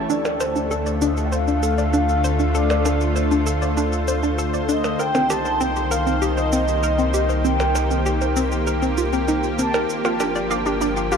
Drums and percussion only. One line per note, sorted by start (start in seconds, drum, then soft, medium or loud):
0.10 shaker medium
0.25 percussion blips medium
0.25 shaker soft
0.40 percussion blips medium
0.40 shaker medium
0.56 shaker soft
0.71 shaker medium
0.86 shaker soft
1.02 shaker medium
1.17 shaker soft
1.32 shaker medium
1.48 shaker soft
1.63 shaker medium
1.78 shaker soft
1.93 shaker medium
2.09 shaker soft
2.24 shaker medium
2.40 shaker soft
2.55 shaker medium
2.70 percussion blips medium
2.70 shaker soft
2.85 percussion blips medium
2.85 shaker medium
3.01 shaker soft
3.16 shaker medium
3.31 shaker soft
3.47 shaker medium
3.62 shaker soft
3.77 shaker medium
3.93 shaker soft
4.08 shaker medium
4.23 shaker soft
4.39 shaker medium
4.54 shaker soft
4.69 shaker medium
4.84 percussion blips medium
4.84 shaker soft
5.00 shaker medium
5.15 percussion blips medium
5.15 shaker soft
5.30 percussion blips medium
5.30 shaker medium
5.46 shaker soft
5.61 shaker medium
5.76 shaker soft
5.91 shaker medium
6.07 shaker soft
6.22 shaker medium
6.37 shaker soft
6.52 shaker loud
6.68 shaker soft
6.83 shaker medium
6.99 shaker soft
7.14 shaker medium
7.29 shaker soft
7.45 shaker medium
7.60 percussion blips medium
7.60 shaker soft
7.75 percussion blips soft
7.75 shaker medium
7.91 shaker soft
8.06 shaker medium
8.21 shaker soft
8.36 shaker medium
8.52 shaker soft
8.67 shaker medium
8.82 shaker soft
8.98 shaker medium
9.13 shaker soft
9.28 shaker medium
9.43 shaker soft
9.59 shaker medium
9.74 percussion blips medium
9.74 shaker soft
9.90 shaker medium
10.05 percussion blips medium
10.05 shaker soft
10.20 percussion blips soft
10.20 shaker medium
10.35 shaker soft
10.51 shaker medium
10.66 shaker soft
10.81 shaker medium
10.97 shaker soft
11.12 shaker medium